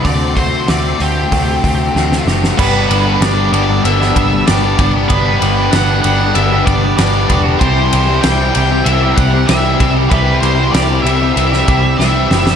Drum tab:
CC |----------------|x---------------|----------------|----------------|
RD |----------------|--x-x-x-x-x-x-x-|x-x-x-x-x-x-x-x-|x-x-x-x-x-x-x-x-|
HH |o-o-o-o-o-o-----|----------------|----------------|----------------|
SD |----o-------oooo|----o----o--o---|----o-------o---|----o-------o---|
BD |o-o-----o-o-----|o---------o---o-|o---------o---o-|o---------o---o-|

CC |----------------|
RD |x-x-x-x-x-x-----|
HH |----------------|
SD |----o----o--o-oo|
BD |o---------o-----|